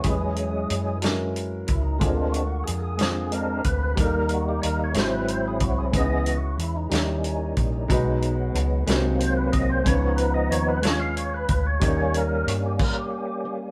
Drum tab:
CC |------|------|------|------|
HH |xxxxxx|xxxxxx|xxxxxx|xxxxxx|
SD |---o--|---o--|---o--|---o--|
BD |o----o|o----o|o----o|o----o|

CC |------|------|---x--|
HH |xxxxxx|xxxxxx|xxx---|
SD |---o--|---o--|------|
BD |o----o|o----o|o--o--|